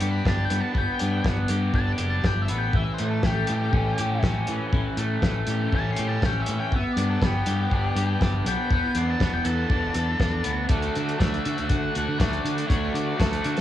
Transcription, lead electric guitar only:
0.11 0.28 B5 medium
0.28 0.45 A5 medium
0.45 0.60 G5 medium
0.60 0.78 A5 medium
0.78 1.25 G5 medium
1.75 1.91 A5 loud
1.93 2.08 D6 medium
2.10 2.27 A5 medium
2.27 2.42 G5 medium
2.42 2.58 E5 medium
2.58 2.74 G5 medium
2.76 2.92 E5 medium
2.94 3.09 C5 medium
3.10 3.25 A4 medium
3.25 4.21 G4 medium
5.75 5.90 A5 loud
5.92 6.07 C6 medium
6.09 6.24 A5 medium
6.26 6.42 G5 medium
6.42 6.59 E5 medium
6.59 6.74 G5 medium
6.76 6.93 E5 medium
6.93 7.07 D5 medium
7.10 7.24 A4 medium
7.26 8.20 G4 loud
8.48 8.95 G5 medium
8.98 9.10 C6 medium
9.10 9.33 A5 medium
9.34 9.46 G5 medium
9.45 10.66 A5 medium
10.70 11.21 A4 loud
11.19 11.63 E5 medium
11.64 11.69 E5 medium
11.69 12.21 F#5 loud
12.19 12.67 D5 loud
12.67 12.94 C#5 loud
12.94 13.17 D5 medium
13.20 13.61 A4 medium

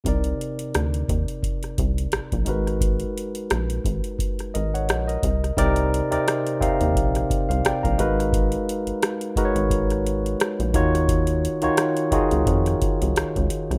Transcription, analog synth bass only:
0.06 0.34 C2 medium
0.76 1.04 D2 medium
1.09 1.25 D#2 medium
1.79 2.07 C2 medium
2.14 2.21 A#1 soft
2.33 2.45 A#1 medium
2.47 3.04 G#1 medium
3.51 3.80 A#1 medium
3.85 4.01 G#1 medium
4.56 4.91 G#1 medium
4.90 5.18 A#1 medium
5.24 5.52 C2 medium
5.57 6.02 C2 medium
6.13 6.18 D#2 soft
6.61 6.69 D#2 soft
6.81 6.97 D#2 medium
6.95 7.24 A#1 medium
7.50 7.62 C2 medium
7.66 7.73 A#1 soft
7.85 7.97 A#1 medium
7.99 8.56 G#1 medium
8.87 8.93 G#1 soft
9.37 9.44 G#1 soft
9.55 10.36 G#1 medium
10.60 10.76 A#1 medium
10.75 11.48 D#2 medium
11.64 11.70 C#2 soft
12.13 12.20 C#2 soft
12.32 12.45 C#2 medium
12.47 12.75 F2 medium
13.02 13.14 C2 medium
13.36 13.48 C#2 medium
13.71 13.78 C2 medium

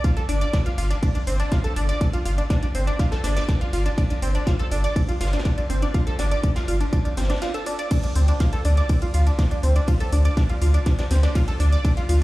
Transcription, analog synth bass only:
0.29 0.45 G1 loud
0.78 0.94 G1 medium
1.27 1.44 G1 medium
1.76 1.93 G1 loud
2.26 2.42 G1 loud
2.75 2.91 G1 medium
3.24 3.40 G1 medium
3.73 3.90 G1 loud
4.22 4.39 G1 loud
4.71 4.88 G1 medium
5.21 5.37 G1 medium
5.70 5.86 G1 medium
6.19 6.36 G1 loud
6.68 6.85 G1 medium
7.17 7.34 G1 medium
8.16 8.32 D2 loud
8.65 8.81 D2 medium
9.14 9.31 D2 loud
9.63 9.80 D2 medium
10.12 10.29 D2 loud
10.62 10.78 D2 medium
11.11 11.27 D2 loud
11.60 11.76 D2 loud
12.09 12.23 D2 loud

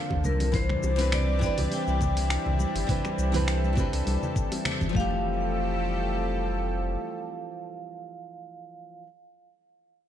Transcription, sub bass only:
0.11 0.26 D2 medium
0.24 0.76 C2 loud
0.83 1.50 C2 loud
1.58 1.67 C2 loud
1.87 2.38 C2 medium
2.46 2.65 C2 medium
2.75 2.85 G1 medium
3.18 3.85 C2 loud
3.93 4.02 C2 loud
4.07 4.17 C2 loud
4.81 4.91 G1 medium
4.95 6.97 F1 medium

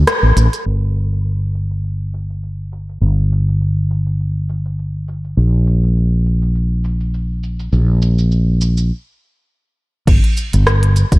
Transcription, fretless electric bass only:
0.23 0.32 A1 medium
0.36 0.47 A1 loud
0.66 2.99 G1 medium
3.01 5.34 G1 medium
5.37 7.70 A#1 medium
7.73 8.90 A#1 medium
10.08 10.18 G1 loud
10.54 11.03 G1 medium
11.12 11.19 G1 medium

